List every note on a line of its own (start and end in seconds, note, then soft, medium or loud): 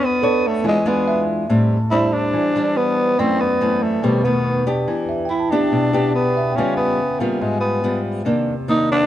0.00 0.62 B3 medium
0.00 0.19 D4 medium
0.00 0.19 A4 medium
0.00 0.19 C#5 medium
0.06 0.49 B3 medium
0.22 0.63 D4 medium
0.22 0.69 A4 soft
0.22 0.63 A4 soft
0.22 0.63 C#5 medium
0.47 0.66 A3 medium
0.64 1.46 E3 medium
0.64 0.77 G#3 soft
0.64 0.77 D4 soft
0.64 0.77 F4 soft
0.68 0.90 G#3 medium
0.86 1.46 G#3 medium
0.86 1.29 B3 medium
0.86 1.46 D4 medium
0.86 1.46 F4 medium
1.08 1.54 E5 medium
1.49 2.32 A2 medium
1.49 1.76 G3 soft
1.49 1.77 C4 soft
1.49 1.77 D4 soft
1.91 2.51 G3 medium
1.91 2.52 C4 medium
1.91 2.52 D4 medium
1.91 2.14 E4 medium
1.91 2.38 C5 soft
2.13 2.79 D4 medium
2.33 3.16 E3 medium
2.55 3.15 G3 soft
2.55 3.16 D4 medium
2.77 3.21 B3 medium
2.77 3.23 B4 soft
3.19 4.01 F#2 medium
3.19 3.46 E3 medium
3.19 3.46 A3 soft
3.19 3.42 C4 medium
3.19 3.46 C4 soft
3.19 3.65 D5 medium
3.40 3.84 B3 medium
3.61 4.01 E3 medium
3.61 4.02 A3 soft
3.61 4.02 C4 medium
3.83 4.05 A3 medium
4.03 4.85 B2 medium
4.03 4.21 D#3 medium
4.03 4.26 G3 medium
4.03 4.21 A3 soft
4.03 4.21 C4 medium
4.03 4.50 B4 soft
4.24 4.63 D#3 medium
4.24 4.63 A3 medium
4.24 4.66 B3 medium
4.67 5.26 B3 medium
4.67 5.26 D4 medium
4.67 5.27 G4 medium
4.88 5.70 E3 medium
5.09 5.55 E5 soft
5.25 5.69 G5 soft
5.29 5.52 E4 medium
5.40 5.82 A5 soft
5.51 5.90 B3 medium
5.51 6.14 D4 medium
5.51 5.91 D4 medium
5.51 5.91 G4 medium
5.72 6.54 B2 medium
5.93 6.53 B3 medium
5.93 6.53 D4 medium
5.93 6.54 G4 medium
6.15 6.57 B3 medium
6.37 6.76 E5 soft
6.52 6.88 G5 soft
6.56 7.39 C#3 medium
6.56 6.99 G3 medium
6.56 6.99 B3 soft
6.56 6.76 C#4 medium
6.56 7.00 F4 soft
6.77 7.21 B3 medium
7.20 7.80 G3 medium
7.20 7.43 A#3 medium
7.20 7.81 B3 soft
7.20 7.80 F4 medium
7.41 8.24 G#2 medium
7.41 7.60 G#3 medium
7.61 8.01 B3 medium
7.84 8.22 G3 soft
7.84 8.23 B3 soft
7.84 8.23 F4 soft
8.25 9.06 C3 medium
8.25 8.53 D#3 soft
8.25 8.53 A#3 medium
8.25 8.53 D4 medium
8.68 9.06 D#3 medium
8.68 9.06 A#3 medium
8.68 9.06 D4 medium
8.68 8.88 D#4 medium
8.92 9.06 D4 loud